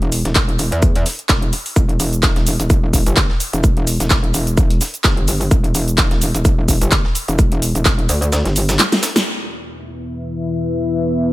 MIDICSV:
0, 0, Header, 1, 4, 480
1, 0, Start_track
1, 0, Key_signature, 1, "minor"
1, 0, Tempo, 468750
1, 1804, Time_signature, 4, 2, 24, 8
1, 11601, End_track
2, 0, Start_track
2, 0, Title_t, "Analog synth pad"
2, 0, Program_c, 0, 89
2, 9485, Note_on_c, 0, 52, 80
2, 9485, Note_on_c, 0, 59, 74
2, 9485, Note_on_c, 0, 71, 73
2, 9485, Note_on_c, 0, 76, 93
2, 11601, Note_off_c, 0, 52, 0
2, 11601, Note_off_c, 0, 59, 0
2, 11601, Note_off_c, 0, 71, 0
2, 11601, Note_off_c, 0, 76, 0
2, 11601, End_track
3, 0, Start_track
3, 0, Title_t, "Wobble bass"
3, 0, Program_c, 1, 39
3, 0, Note_on_c, 1, 28, 99
3, 237, Note_off_c, 1, 28, 0
3, 258, Note_on_c, 1, 28, 100
3, 348, Note_off_c, 1, 28, 0
3, 364, Note_on_c, 1, 28, 99
3, 588, Note_off_c, 1, 28, 0
3, 604, Note_on_c, 1, 28, 93
3, 717, Note_off_c, 1, 28, 0
3, 738, Note_on_c, 1, 40, 97
3, 1068, Note_off_c, 1, 40, 0
3, 1324, Note_on_c, 1, 28, 98
3, 1548, Note_off_c, 1, 28, 0
3, 1805, Note_on_c, 1, 28, 98
3, 2028, Note_off_c, 1, 28, 0
3, 2044, Note_on_c, 1, 28, 97
3, 2396, Note_off_c, 1, 28, 0
3, 2417, Note_on_c, 1, 28, 98
3, 2636, Note_off_c, 1, 28, 0
3, 2657, Note_on_c, 1, 28, 99
3, 3116, Note_off_c, 1, 28, 0
3, 3137, Note_on_c, 1, 31, 97
3, 3356, Note_off_c, 1, 31, 0
3, 3618, Note_on_c, 1, 28, 97
3, 4077, Note_off_c, 1, 28, 0
3, 4098, Note_on_c, 1, 28, 98
3, 4188, Note_off_c, 1, 28, 0
3, 4204, Note_on_c, 1, 28, 96
3, 4427, Note_off_c, 1, 28, 0
3, 4445, Note_on_c, 1, 28, 94
3, 4908, Note_off_c, 1, 28, 0
3, 5164, Note_on_c, 1, 31, 99
3, 5627, Note_off_c, 1, 31, 0
3, 5644, Note_on_c, 1, 28, 96
3, 5868, Note_off_c, 1, 28, 0
3, 5884, Note_on_c, 1, 28, 94
3, 6237, Note_off_c, 1, 28, 0
3, 6258, Note_on_c, 1, 28, 97
3, 6477, Note_off_c, 1, 28, 0
3, 6498, Note_on_c, 1, 28, 98
3, 6957, Note_off_c, 1, 28, 0
3, 6978, Note_on_c, 1, 31, 100
3, 7197, Note_off_c, 1, 31, 0
3, 7458, Note_on_c, 1, 28, 97
3, 7917, Note_off_c, 1, 28, 0
3, 7938, Note_on_c, 1, 28, 99
3, 8027, Note_off_c, 1, 28, 0
3, 8044, Note_on_c, 1, 28, 100
3, 8267, Note_off_c, 1, 28, 0
3, 8285, Note_on_c, 1, 38, 97
3, 8637, Note_off_c, 1, 38, 0
3, 8658, Note_on_c, 1, 31, 98
3, 8988, Note_off_c, 1, 31, 0
3, 11601, End_track
4, 0, Start_track
4, 0, Title_t, "Drums"
4, 19, Note_on_c, 9, 42, 34
4, 121, Note_off_c, 9, 42, 0
4, 124, Note_on_c, 9, 82, 68
4, 125, Note_on_c, 9, 46, 112
4, 226, Note_off_c, 9, 82, 0
4, 228, Note_off_c, 9, 46, 0
4, 257, Note_on_c, 9, 38, 45
4, 259, Note_on_c, 9, 42, 51
4, 360, Note_off_c, 9, 38, 0
4, 361, Note_off_c, 9, 42, 0
4, 363, Note_on_c, 9, 39, 120
4, 364, Note_on_c, 9, 36, 119
4, 364, Note_on_c, 9, 38, 113
4, 364, Note_on_c, 9, 82, 88
4, 365, Note_on_c, 9, 42, 61
4, 465, Note_off_c, 9, 39, 0
4, 466, Note_off_c, 9, 38, 0
4, 466, Note_off_c, 9, 82, 0
4, 467, Note_off_c, 9, 36, 0
4, 467, Note_off_c, 9, 42, 0
4, 499, Note_on_c, 9, 42, 34
4, 601, Note_off_c, 9, 42, 0
4, 604, Note_on_c, 9, 82, 68
4, 605, Note_on_c, 9, 46, 109
4, 706, Note_off_c, 9, 82, 0
4, 707, Note_off_c, 9, 46, 0
4, 739, Note_on_c, 9, 42, 49
4, 841, Note_off_c, 9, 42, 0
4, 844, Note_on_c, 9, 36, 120
4, 844, Note_on_c, 9, 82, 84
4, 845, Note_on_c, 9, 42, 61
4, 946, Note_off_c, 9, 82, 0
4, 947, Note_off_c, 9, 36, 0
4, 947, Note_off_c, 9, 42, 0
4, 978, Note_on_c, 9, 42, 35
4, 1081, Note_off_c, 9, 42, 0
4, 1084, Note_on_c, 9, 38, 40
4, 1084, Note_on_c, 9, 82, 65
4, 1085, Note_on_c, 9, 46, 109
4, 1187, Note_off_c, 9, 38, 0
4, 1187, Note_off_c, 9, 46, 0
4, 1187, Note_off_c, 9, 82, 0
4, 1218, Note_on_c, 9, 42, 48
4, 1321, Note_off_c, 9, 42, 0
4, 1323, Note_on_c, 9, 39, 117
4, 1324, Note_on_c, 9, 36, 122
4, 1324, Note_on_c, 9, 38, 119
4, 1324, Note_on_c, 9, 82, 88
4, 1325, Note_on_c, 9, 42, 61
4, 1425, Note_off_c, 9, 39, 0
4, 1427, Note_off_c, 9, 36, 0
4, 1427, Note_off_c, 9, 38, 0
4, 1427, Note_off_c, 9, 42, 0
4, 1427, Note_off_c, 9, 82, 0
4, 1458, Note_on_c, 9, 42, 35
4, 1561, Note_off_c, 9, 42, 0
4, 1565, Note_on_c, 9, 46, 109
4, 1565, Note_on_c, 9, 82, 67
4, 1667, Note_off_c, 9, 46, 0
4, 1667, Note_off_c, 9, 82, 0
4, 1699, Note_on_c, 9, 46, 63
4, 1801, Note_off_c, 9, 46, 0
4, 1804, Note_on_c, 9, 36, 116
4, 1805, Note_on_c, 9, 42, 62
4, 1805, Note_on_c, 9, 82, 89
4, 1811, Note_off_c, 9, 82, 0
4, 1811, Note_on_c, 9, 82, 34
4, 1907, Note_off_c, 9, 36, 0
4, 1907, Note_off_c, 9, 42, 0
4, 1914, Note_off_c, 9, 82, 0
4, 1938, Note_on_c, 9, 42, 36
4, 2041, Note_off_c, 9, 42, 0
4, 2045, Note_on_c, 9, 46, 102
4, 2045, Note_on_c, 9, 82, 67
4, 2051, Note_off_c, 9, 82, 0
4, 2051, Note_on_c, 9, 82, 80
4, 2147, Note_off_c, 9, 46, 0
4, 2154, Note_off_c, 9, 82, 0
4, 2178, Note_on_c, 9, 42, 50
4, 2184, Note_on_c, 9, 82, 44
4, 2280, Note_off_c, 9, 42, 0
4, 2282, Note_on_c, 9, 39, 116
4, 2284, Note_on_c, 9, 36, 117
4, 2285, Note_off_c, 9, 82, 0
4, 2285, Note_on_c, 9, 38, 113
4, 2285, Note_on_c, 9, 42, 65
4, 2285, Note_on_c, 9, 82, 88
4, 2291, Note_off_c, 9, 82, 0
4, 2291, Note_on_c, 9, 82, 34
4, 2385, Note_off_c, 9, 39, 0
4, 2387, Note_off_c, 9, 36, 0
4, 2387, Note_off_c, 9, 38, 0
4, 2387, Note_off_c, 9, 42, 0
4, 2394, Note_off_c, 9, 82, 0
4, 2418, Note_on_c, 9, 38, 50
4, 2418, Note_on_c, 9, 42, 34
4, 2521, Note_off_c, 9, 38, 0
4, 2521, Note_off_c, 9, 42, 0
4, 2525, Note_on_c, 9, 46, 106
4, 2525, Note_on_c, 9, 82, 68
4, 2532, Note_off_c, 9, 82, 0
4, 2532, Note_on_c, 9, 82, 77
4, 2627, Note_off_c, 9, 46, 0
4, 2634, Note_off_c, 9, 82, 0
4, 2658, Note_on_c, 9, 42, 44
4, 2665, Note_on_c, 9, 82, 44
4, 2761, Note_off_c, 9, 42, 0
4, 2764, Note_on_c, 9, 36, 118
4, 2765, Note_off_c, 9, 82, 0
4, 2765, Note_on_c, 9, 42, 65
4, 2765, Note_on_c, 9, 82, 88
4, 2771, Note_off_c, 9, 82, 0
4, 2771, Note_on_c, 9, 82, 34
4, 2867, Note_off_c, 9, 36, 0
4, 2867, Note_off_c, 9, 42, 0
4, 2874, Note_off_c, 9, 82, 0
4, 3004, Note_on_c, 9, 36, 61
4, 3005, Note_on_c, 9, 46, 105
4, 3005, Note_on_c, 9, 82, 65
4, 3012, Note_off_c, 9, 82, 0
4, 3012, Note_on_c, 9, 82, 80
4, 3107, Note_off_c, 9, 36, 0
4, 3107, Note_off_c, 9, 46, 0
4, 3114, Note_off_c, 9, 82, 0
4, 3138, Note_on_c, 9, 42, 50
4, 3144, Note_on_c, 9, 82, 44
4, 3240, Note_off_c, 9, 42, 0
4, 3242, Note_on_c, 9, 39, 117
4, 3244, Note_off_c, 9, 82, 0
4, 3244, Note_on_c, 9, 36, 117
4, 3244, Note_on_c, 9, 38, 120
4, 3244, Note_on_c, 9, 42, 63
4, 3244, Note_on_c, 9, 82, 87
4, 3251, Note_off_c, 9, 82, 0
4, 3251, Note_on_c, 9, 82, 33
4, 3344, Note_off_c, 9, 39, 0
4, 3347, Note_off_c, 9, 36, 0
4, 3347, Note_off_c, 9, 38, 0
4, 3347, Note_off_c, 9, 42, 0
4, 3353, Note_off_c, 9, 82, 0
4, 3378, Note_on_c, 9, 38, 50
4, 3480, Note_off_c, 9, 38, 0
4, 3484, Note_on_c, 9, 46, 110
4, 3484, Note_on_c, 9, 82, 68
4, 3491, Note_off_c, 9, 82, 0
4, 3491, Note_on_c, 9, 82, 81
4, 3587, Note_off_c, 9, 46, 0
4, 3593, Note_off_c, 9, 82, 0
4, 3618, Note_on_c, 9, 42, 52
4, 3625, Note_on_c, 9, 82, 47
4, 3720, Note_off_c, 9, 42, 0
4, 3724, Note_off_c, 9, 82, 0
4, 3724, Note_on_c, 9, 36, 114
4, 3724, Note_on_c, 9, 82, 90
4, 3725, Note_on_c, 9, 42, 67
4, 3731, Note_off_c, 9, 82, 0
4, 3731, Note_on_c, 9, 82, 35
4, 3827, Note_off_c, 9, 36, 0
4, 3827, Note_off_c, 9, 42, 0
4, 3834, Note_off_c, 9, 82, 0
4, 3858, Note_on_c, 9, 42, 38
4, 3960, Note_off_c, 9, 42, 0
4, 3964, Note_on_c, 9, 82, 70
4, 3965, Note_on_c, 9, 46, 102
4, 3971, Note_off_c, 9, 82, 0
4, 3971, Note_on_c, 9, 82, 82
4, 4067, Note_off_c, 9, 46, 0
4, 4074, Note_off_c, 9, 82, 0
4, 4097, Note_on_c, 9, 38, 46
4, 4098, Note_on_c, 9, 42, 53
4, 4105, Note_on_c, 9, 82, 48
4, 4200, Note_off_c, 9, 38, 0
4, 4200, Note_off_c, 9, 42, 0
4, 4202, Note_on_c, 9, 39, 112
4, 4203, Note_off_c, 9, 82, 0
4, 4203, Note_on_c, 9, 38, 113
4, 4203, Note_on_c, 9, 82, 85
4, 4204, Note_on_c, 9, 36, 113
4, 4204, Note_on_c, 9, 42, 65
4, 4211, Note_off_c, 9, 82, 0
4, 4211, Note_on_c, 9, 82, 35
4, 4305, Note_off_c, 9, 39, 0
4, 4306, Note_off_c, 9, 38, 0
4, 4307, Note_off_c, 9, 36, 0
4, 4307, Note_off_c, 9, 42, 0
4, 4313, Note_off_c, 9, 82, 0
4, 4338, Note_on_c, 9, 42, 35
4, 4440, Note_off_c, 9, 42, 0
4, 4444, Note_on_c, 9, 46, 100
4, 4444, Note_on_c, 9, 82, 71
4, 4451, Note_off_c, 9, 82, 0
4, 4451, Note_on_c, 9, 82, 79
4, 4547, Note_off_c, 9, 46, 0
4, 4553, Note_off_c, 9, 82, 0
4, 4578, Note_on_c, 9, 42, 53
4, 4584, Note_on_c, 9, 82, 47
4, 4680, Note_off_c, 9, 42, 0
4, 4683, Note_off_c, 9, 82, 0
4, 4683, Note_on_c, 9, 82, 85
4, 4684, Note_on_c, 9, 36, 115
4, 4684, Note_on_c, 9, 42, 66
4, 4691, Note_off_c, 9, 82, 0
4, 4691, Note_on_c, 9, 82, 34
4, 4786, Note_off_c, 9, 36, 0
4, 4787, Note_off_c, 9, 42, 0
4, 4793, Note_off_c, 9, 82, 0
4, 4817, Note_on_c, 9, 42, 44
4, 4818, Note_off_c, 9, 42, 0
4, 4818, Note_on_c, 9, 42, 37
4, 4920, Note_off_c, 9, 42, 0
4, 4924, Note_on_c, 9, 38, 40
4, 4924, Note_on_c, 9, 46, 103
4, 4924, Note_on_c, 9, 82, 66
4, 4931, Note_off_c, 9, 82, 0
4, 4931, Note_on_c, 9, 82, 82
4, 5026, Note_off_c, 9, 38, 0
4, 5026, Note_off_c, 9, 46, 0
4, 5033, Note_off_c, 9, 82, 0
4, 5057, Note_on_c, 9, 42, 51
4, 5064, Note_on_c, 9, 82, 44
4, 5160, Note_off_c, 9, 42, 0
4, 5162, Note_on_c, 9, 39, 114
4, 5164, Note_off_c, 9, 82, 0
4, 5164, Note_on_c, 9, 36, 116
4, 5164, Note_on_c, 9, 38, 121
4, 5164, Note_on_c, 9, 42, 67
4, 5164, Note_on_c, 9, 82, 91
4, 5171, Note_off_c, 9, 82, 0
4, 5171, Note_on_c, 9, 82, 35
4, 5264, Note_off_c, 9, 39, 0
4, 5266, Note_off_c, 9, 38, 0
4, 5267, Note_off_c, 9, 36, 0
4, 5267, Note_off_c, 9, 42, 0
4, 5273, Note_off_c, 9, 82, 0
4, 5298, Note_on_c, 9, 42, 37
4, 5400, Note_off_c, 9, 42, 0
4, 5404, Note_on_c, 9, 46, 103
4, 5404, Note_on_c, 9, 82, 70
4, 5411, Note_off_c, 9, 82, 0
4, 5411, Note_on_c, 9, 82, 82
4, 5507, Note_off_c, 9, 46, 0
4, 5513, Note_off_c, 9, 82, 0
4, 5538, Note_on_c, 9, 46, 60
4, 5544, Note_on_c, 9, 82, 47
4, 5640, Note_off_c, 9, 46, 0
4, 5644, Note_off_c, 9, 82, 0
4, 5644, Note_on_c, 9, 36, 112
4, 5644, Note_on_c, 9, 42, 67
4, 5644, Note_on_c, 9, 82, 85
4, 5651, Note_off_c, 9, 82, 0
4, 5651, Note_on_c, 9, 82, 35
4, 5747, Note_off_c, 9, 36, 0
4, 5747, Note_off_c, 9, 42, 0
4, 5753, Note_off_c, 9, 82, 0
4, 5778, Note_on_c, 9, 42, 37
4, 5880, Note_off_c, 9, 42, 0
4, 5884, Note_on_c, 9, 46, 104
4, 5884, Note_on_c, 9, 82, 71
4, 5891, Note_off_c, 9, 82, 0
4, 5891, Note_on_c, 9, 82, 82
4, 5987, Note_off_c, 9, 46, 0
4, 5993, Note_off_c, 9, 82, 0
4, 6018, Note_on_c, 9, 42, 54
4, 6025, Note_on_c, 9, 82, 48
4, 6121, Note_off_c, 9, 42, 0
4, 6122, Note_on_c, 9, 39, 116
4, 6124, Note_off_c, 9, 82, 0
4, 6124, Note_on_c, 9, 36, 110
4, 6124, Note_on_c, 9, 38, 114
4, 6124, Note_on_c, 9, 42, 66
4, 6124, Note_on_c, 9, 82, 88
4, 6131, Note_off_c, 9, 82, 0
4, 6131, Note_on_c, 9, 82, 34
4, 6225, Note_off_c, 9, 39, 0
4, 6226, Note_off_c, 9, 38, 0
4, 6227, Note_off_c, 9, 36, 0
4, 6227, Note_off_c, 9, 42, 0
4, 6233, Note_off_c, 9, 82, 0
4, 6258, Note_on_c, 9, 38, 50
4, 6258, Note_on_c, 9, 42, 36
4, 6360, Note_off_c, 9, 38, 0
4, 6360, Note_off_c, 9, 42, 0
4, 6364, Note_on_c, 9, 46, 98
4, 6364, Note_on_c, 9, 82, 69
4, 6371, Note_off_c, 9, 82, 0
4, 6371, Note_on_c, 9, 82, 83
4, 6467, Note_off_c, 9, 46, 0
4, 6473, Note_off_c, 9, 82, 0
4, 6497, Note_on_c, 9, 42, 44
4, 6498, Note_off_c, 9, 42, 0
4, 6498, Note_on_c, 9, 42, 53
4, 6505, Note_on_c, 9, 82, 47
4, 6600, Note_off_c, 9, 42, 0
4, 6603, Note_off_c, 9, 82, 0
4, 6603, Note_on_c, 9, 82, 88
4, 6604, Note_on_c, 9, 36, 114
4, 6604, Note_on_c, 9, 42, 69
4, 6611, Note_off_c, 9, 82, 0
4, 6611, Note_on_c, 9, 82, 35
4, 6706, Note_off_c, 9, 36, 0
4, 6707, Note_off_c, 9, 42, 0
4, 6714, Note_off_c, 9, 82, 0
4, 6844, Note_on_c, 9, 36, 57
4, 6844, Note_on_c, 9, 46, 98
4, 6844, Note_on_c, 9, 82, 65
4, 6851, Note_off_c, 9, 82, 0
4, 6851, Note_on_c, 9, 82, 83
4, 6946, Note_off_c, 9, 36, 0
4, 6947, Note_off_c, 9, 46, 0
4, 6953, Note_off_c, 9, 82, 0
4, 6978, Note_on_c, 9, 42, 54
4, 6985, Note_on_c, 9, 82, 45
4, 7080, Note_off_c, 9, 42, 0
4, 7082, Note_on_c, 9, 39, 117
4, 7084, Note_off_c, 9, 82, 0
4, 7084, Note_on_c, 9, 36, 113
4, 7084, Note_on_c, 9, 38, 118
4, 7084, Note_on_c, 9, 42, 68
4, 7084, Note_on_c, 9, 82, 90
4, 7091, Note_off_c, 9, 82, 0
4, 7091, Note_on_c, 9, 82, 36
4, 7185, Note_off_c, 9, 39, 0
4, 7186, Note_off_c, 9, 38, 0
4, 7187, Note_off_c, 9, 36, 0
4, 7187, Note_off_c, 9, 42, 0
4, 7193, Note_off_c, 9, 82, 0
4, 7218, Note_on_c, 9, 38, 49
4, 7320, Note_off_c, 9, 38, 0
4, 7324, Note_on_c, 9, 46, 99
4, 7324, Note_on_c, 9, 82, 71
4, 7331, Note_off_c, 9, 82, 0
4, 7331, Note_on_c, 9, 82, 82
4, 7427, Note_off_c, 9, 46, 0
4, 7433, Note_off_c, 9, 82, 0
4, 7458, Note_on_c, 9, 42, 54
4, 7464, Note_on_c, 9, 82, 48
4, 7560, Note_off_c, 9, 42, 0
4, 7564, Note_off_c, 9, 82, 0
4, 7564, Note_on_c, 9, 36, 114
4, 7564, Note_on_c, 9, 42, 69
4, 7564, Note_on_c, 9, 82, 89
4, 7571, Note_off_c, 9, 82, 0
4, 7571, Note_on_c, 9, 82, 36
4, 7667, Note_off_c, 9, 36, 0
4, 7667, Note_off_c, 9, 42, 0
4, 7673, Note_off_c, 9, 82, 0
4, 7698, Note_on_c, 9, 42, 39
4, 7800, Note_off_c, 9, 42, 0
4, 7804, Note_on_c, 9, 46, 101
4, 7811, Note_on_c, 9, 82, 81
4, 7907, Note_off_c, 9, 46, 0
4, 7913, Note_off_c, 9, 82, 0
4, 7938, Note_on_c, 9, 42, 55
4, 7944, Note_on_c, 9, 82, 47
4, 8040, Note_off_c, 9, 42, 0
4, 8042, Note_on_c, 9, 39, 120
4, 8044, Note_off_c, 9, 82, 0
4, 8044, Note_on_c, 9, 36, 113
4, 8044, Note_on_c, 9, 38, 115
4, 8044, Note_on_c, 9, 42, 70
4, 8044, Note_on_c, 9, 82, 88
4, 8051, Note_off_c, 9, 82, 0
4, 8051, Note_on_c, 9, 82, 36
4, 8145, Note_off_c, 9, 39, 0
4, 8147, Note_off_c, 9, 36, 0
4, 8147, Note_off_c, 9, 38, 0
4, 8147, Note_off_c, 9, 42, 0
4, 8153, Note_off_c, 9, 82, 0
4, 8178, Note_on_c, 9, 42, 38
4, 8280, Note_off_c, 9, 42, 0
4, 8284, Note_on_c, 9, 46, 103
4, 8284, Note_on_c, 9, 82, 69
4, 8291, Note_off_c, 9, 82, 0
4, 8291, Note_on_c, 9, 82, 82
4, 8387, Note_off_c, 9, 46, 0
4, 8394, Note_off_c, 9, 82, 0
4, 8418, Note_on_c, 9, 42, 55
4, 8425, Note_on_c, 9, 82, 46
4, 8520, Note_off_c, 9, 42, 0
4, 8524, Note_off_c, 9, 82, 0
4, 8524, Note_on_c, 9, 38, 104
4, 8524, Note_on_c, 9, 42, 70
4, 8524, Note_on_c, 9, 82, 78
4, 8531, Note_off_c, 9, 82, 0
4, 8531, Note_on_c, 9, 82, 36
4, 8627, Note_off_c, 9, 38, 0
4, 8627, Note_off_c, 9, 42, 0
4, 8634, Note_off_c, 9, 82, 0
4, 8658, Note_on_c, 9, 38, 41
4, 8658, Note_on_c, 9, 42, 39
4, 8760, Note_off_c, 9, 42, 0
4, 8761, Note_off_c, 9, 38, 0
4, 8765, Note_on_c, 9, 46, 102
4, 8765, Note_on_c, 9, 82, 59
4, 8771, Note_off_c, 9, 82, 0
4, 8771, Note_on_c, 9, 82, 80
4, 8867, Note_off_c, 9, 46, 0
4, 8873, Note_off_c, 9, 82, 0
4, 8898, Note_on_c, 9, 38, 107
4, 8898, Note_on_c, 9, 42, 54
4, 8898, Note_on_c, 9, 82, 79
4, 8904, Note_off_c, 9, 82, 0
4, 8904, Note_on_c, 9, 82, 47
4, 9000, Note_off_c, 9, 38, 0
4, 9000, Note_off_c, 9, 42, 0
4, 9002, Note_on_c, 9, 39, 122
4, 9004, Note_on_c, 9, 38, 62
4, 9004, Note_on_c, 9, 42, 71
4, 9005, Note_off_c, 9, 38, 0
4, 9005, Note_on_c, 9, 38, 43
4, 9007, Note_off_c, 9, 82, 0
4, 9011, Note_on_c, 9, 82, 36
4, 9105, Note_off_c, 9, 39, 0
4, 9107, Note_off_c, 9, 38, 0
4, 9107, Note_off_c, 9, 42, 0
4, 9113, Note_off_c, 9, 82, 0
4, 9138, Note_on_c, 9, 38, 66
4, 9138, Note_on_c, 9, 42, 40
4, 9138, Note_on_c, 9, 82, 64
4, 9240, Note_off_c, 9, 38, 0
4, 9240, Note_off_c, 9, 42, 0
4, 9241, Note_off_c, 9, 82, 0
4, 9244, Note_on_c, 9, 38, 110
4, 9244, Note_on_c, 9, 46, 100
4, 9244, Note_on_c, 9, 82, 80
4, 9251, Note_off_c, 9, 82, 0
4, 9251, Note_on_c, 9, 82, 83
4, 9347, Note_off_c, 9, 38, 0
4, 9347, Note_off_c, 9, 46, 0
4, 9353, Note_off_c, 9, 82, 0
4, 9378, Note_on_c, 9, 38, 85
4, 9378, Note_on_c, 9, 46, 58
4, 9385, Note_on_c, 9, 82, 47
4, 9481, Note_off_c, 9, 38, 0
4, 9481, Note_off_c, 9, 46, 0
4, 9487, Note_off_c, 9, 82, 0
4, 11601, End_track
0, 0, End_of_file